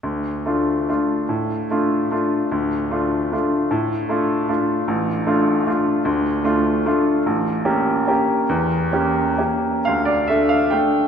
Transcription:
\new Staff \with { instrumentName = "Grand piano" } { \time 3/4 \key d \minor \tempo 4 = 148 << { r2. | r2. | r2. | r2. |
r2. | r2. | r2. | r2. |
f''8 d''8 e''8 f''8 g''4 | } \\ { d,4 <a d' f'>4 <a d' f'>4 | a,4 <a d' f'>4 <a d' f'>4 | d,4 <a d' f'>4 <a d' f'>4 | a,4 <a d' f'>4 <a d' f'>4 |
a,,4 <a d' f'>4 <a d' f'>4 | d,4 <a d' f'>4 <a d' f'>4 | a,,4 <bes cis' g'>4 <bes cis' g'>4 | e,4 <bes cis' g'>4 <bes cis' g'>4 |
d,4 <a d' a'>4 <a d' a'>4 | } >> }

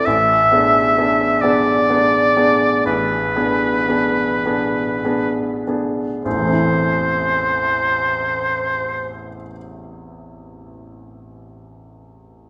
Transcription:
<<
  \new Staff \with { instrumentName = "Oboe" } { \time 4/4 \key e \phrygian \tempo 4 = 38 e''4 d''4 b'4. r8 | c''1 | }
  \new Staff \with { instrumentName = "Grand piano" } { \time 4/4 \key e \phrygian \tuplet 3/2 { a,,8 <b d' gis'>8 <b d' gis'>8 <b d' gis'>8 <b d' gis'>8 <b d' gis'>8 a,,8 <b d' gis'>8 <b d' gis'>8 <b d' gis'>8 <b d' gis'>8 <b d' gis'>8 } | <a,, e, e a c' e'>1 | }
>>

